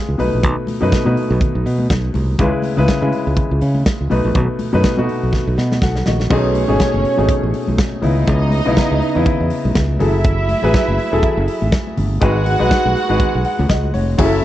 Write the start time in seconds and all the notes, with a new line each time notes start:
Already playing: C#3 G#3 D#4 E4 G4 G#4 B4
0.09 C#2
0.18 B1 B2 A3 D#4 B4, open hi-hat, high conga
0.33 A#1
0.43 B1, kick, closed hi-hat, muted conga, low conga
0.67 open hi-hat, muted conga, high conga
0.80 F#2 B2 A3 D#4 B4, high conga
0.92 muted fingered electric bass stroke, kick, snare, closed hi-hat
1.05 B2 A3 D#4 B4, high conga
1.16 open hi-hat, muted conga
1.30 B1
1.41 kick, closed hi-hat, low conga
1.55 B1
1.66 B2, open hi-hat
1.78 high conga
1.89 B1, kick, snare, closed hi-hat, muted conga
2.14 C2, open hi-hat, muted conga, high conga
2.38 C#2 C#3 G#3 E4 B4, kick, closed hi-hat, muted conga, low conga
2.62 open hi-hat, high conga
2.76 C#2 C#3 G#3 E4 B4, high conga
2.86 muted fingered electric bass stroke, kick, snare, closed hi-hat, muted conga
3.01 C#3 G#3 E4 B4, high conga
3.12 open hi-hat, muted conga
3.27 C#2
3.37 kick, closed hi-hat, muted conga, low conga
3.51 C#2
3.61 C#3, open hi-hat, muted conga
3.75 high conga
3.86 kick, snare, closed hi-hat
4.01 C#2
4.10 B1 B2 A3 D#4 B4, open hi-hat, high conga
4.25 A#1
4.35 B1, kick, closed hi-hat, low conga
4.59 open hi-hat, muted conga, high conga
4.73 F#2 B2 A3 D#4 B4, high conga
4.84 kick, snare, closed hi-hat
4.97 B2 A3 D#4 F#4, high conga
5.09 open hi-hat
5.23 B1
5.33 kick, snare, low conga
5.47 B1
5.58 B2, snare
5.72 snare, high conga
5.82 B1 A4 F#5, kick, snare
5.96 snare
6.06 A#1 F#4 D#5, snare, high conga, low conga
6.20 snare
6.30 B1 B2 A3 C#4 D#4 G#4 C#5, kick, crash, muted conga, low conga
6.54 open hi-hat, muted conga, high conga
6.68 G#1 B2 A3 C#4 D#4 G#4, high conga
6.80 kick, snare, closed hi-hat
6.94 F#1, high conga
7.05 open hi-hat
7.17 G#1 B2 A3 C#4 D#4 G#4
7.29 kick, closed hi-hat, muted conga, low conga
7.43 A1
7.54 open hi-hat, muted conga
7.67 B1, high conga
7.78 kick, snare, closed hi-hat
7.92 high conga
8.01 C#2 C#3 B3 D#4 E4 D#5, open hi-hat, muted conga, high conga, low conga
8.27 C#2, kick, closed hi-hat, muted conga, low conga
8.51 open hi-hat, muted conga, high conga
8.65 B1 C#3 B3 D#4 E4, high conga
8.75 kick, snare, closed hi-hat, muted conga
8.91 C#2, high conga
9.01 open hi-hat, muted conga
9.15 E2 C#3 B3 D#4 E4
9.26 kick, closed hi-hat, muted conga, low conga
9.41 E2
9.50 open hi-hat, muted conga
9.65 B1, high conga
9.75 C#2, kick, snare, closed hi-hat, muted conga
9.90 high conga
9.99 F#1 F#3 E4 G#4 A4 E5, open hi-hat, muted conga, high conga, low conga
10.24 kick, closed hi-hat, muted conga, low conga
10.49 open hi-hat, muted conga, high conga
10.62 A1 F#3 E4 G#4 B4, high conga
10.74 kick, snare, closed hi-hat
10.88 F#1, high conga
10.99 open hi-hat
11.11 E1 F#3 E4 G#4 A4
11.23 kick, closed hi-hat, muted conga, low conga
11.37 F#1
11.48 open hi-hat
11.62 G#1, high conga
11.72 kick, snare, closed hi-hat
11.87 high conga
11.97 G1, open hi-hat, muted conga, high conga, low conga
12.21 G#1 G#3 D#4 F#4 B4 F#5, kick, closed hi-hat, muted conga, low conga
12.46 open hi-hat, high conga
12.59 B1 G#3 D#4 F#4 B4, high conga
12.71 kick, snare, closed hi-hat
12.86 B1, high conga
12.95 open hi-hat, muted conga
13.09 G#1 G#3 D#4 F#4 B4
13.20 kick, closed hi-hat, muted conga, low conga
13.35 B1
13.45 F#5, open hi-hat
13.59 C#2, high conga
13.69 C#2 D#5, kick, snare, closed hi-hat, muted conga
13.83 high conga
13.94 F1 C#5, open hi-hat, muted conga, high conga
14.18 F#1 F#3 C#4 E4 G#4 E5, kick, crash, low conga
14.25 A4